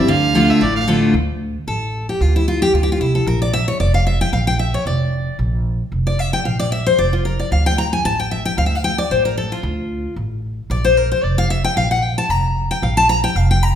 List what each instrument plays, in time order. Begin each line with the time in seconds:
0.08 upright bass D2, steel-string acoustic guitar D3, fiddle F5
0.35 steel-string acoustic guitar D3 A3 D4 F4
0.49 fiddle E5
0.61 upright bass A1, steel-string acoustic guitar A2, fiddle D5
0.76 fiddle F5
0.88 steel-string acoustic guitar D3 A3 D4 F4
1.14 upright bass D2
1.67 upright bass A1, steel-string acoustic guitar A4
2.09 steel-string acoustic guitar G4
2.21 upright bass D2, steel-string acoustic guitar F4
2.36 steel-string acoustic guitar E4
2.48 steel-string acoustic guitar F4
2.62 steel-string acoustic guitar G4
2.73 upright bass D2, steel-string acoustic guitar F4
2.83 steel-string acoustic guitar G4
2.92 steel-string acoustic guitar F4
3.00 upright bass C2, steel-string acoustic guitar E4
3.15 steel-string acoustic guitar A4
3.26 upright bass A#1, steel-string acoustic guitar A#4
3.42 steel-string acoustic guitar D5
3.53 steel-string acoustic guitar E5
3.68 steel-string acoustic guitar C#5
3.80 upright bass F1, steel-string acoustic guitar D5
3.94 steel-string acoustic guitar F5
4.07 steel-string acoustic guitar E5
4.21 steel-string acoustic guitar G5
4.33 upright bass A#1, steel-string acoustic guitar F5
4.47 steel-string acoustic guitar G5
4.59 steel-string acoustic guitar E5
4.74 steel-string acoustic guitar C#5
4.86 upright bass F1, steel-string acoustic guitar D5
5.39 upright bass A#1
5.92 upright bass F1
6.07 steel-string acoustic guitar D5
6.19 steel-string acoustic guitar E5
6.33 steel-string acoustic guitar G5
6.45 upright bass A#1, steel-string acoustic guitar F5
6.59 steel-string acoustic guitar D5
6.72 steel-string acoustic guitar E5
6.86 steel-string acoustic guitar C5
6.98 upright bass F1, steel-string acoustic guitar D5
7.13 steel-string acoustic guitar F4
7.25 steel-string acoustic guitar A#4
7.39 steel-string acoustic guitar D5
7.51 upright bass D2, steel-string acoustic guitar F5
7.66 steel-string acoustic guitar G5
7.78 steel-string acoustic guitar A#5
7.93 steel-string acoustic guitar G#5
8.04 upright bass A1, steel-string acoustic guitar A5
8.19 steel-string acoustic guitar G5
8.31 steel-string acoustic guitar E5
8.45 steel-string acoustic guitar G5
8.57 upright bass D2, steel-string acoustic guitar F5
8.66 steel-string acoustic guitar E5
8.75 steel-string acoustic guitar F5
8.84 steel-string acoustic guitar G5
8.98 steel-string acoustic guitar D5
9.11 upright bass A1, steel-string acoustic guitar C5
9.25 steel-string acoustic guitar A#4
9.38 steel-string acoustic guitar A4
9.52 steel-string acoustic guitar F4
9.63 upright bass D2
10.16 upright bass A1
10.70 upright bass A#1, steel-string acoustic guitar D5
10.84 steel-string acoustic guitar C5
10.97 steel-string acoustic guitar A#4
11.12 steel-string acoustic guitar C5
11.23 upright bass F1, steel-string acoustic guitar D5
11.38 steel-string acoustic guitar F5
11.50 steel-string acoustic guitar E5
11.64 steel-string acoustic guitar G5
11.76 upright bass A#1, steel-string acoustic guitar F5
11.91 steel-string acoustic guitar F#5
12.03 steel-string acoustic guitar G5
12.18 steel-string acoustic guitar A5
12.29 upright bass F1, steel-string acoustic guitar A#5
12.71 steel-string acoustic guitar G5
12.82 upright bass A#1, steel-string acoustic guitar F5
12.97 steel-string acoustic guitar A5
13.09 steel-string acoustic guitar A#5
13.24 steel-string acoustic guitar G5
13.35 upright bass F1, steel-string acoustic guitar F5
13.51 steel-string acoustic guitar G5
13.63 steel-string acoustic guitar A#5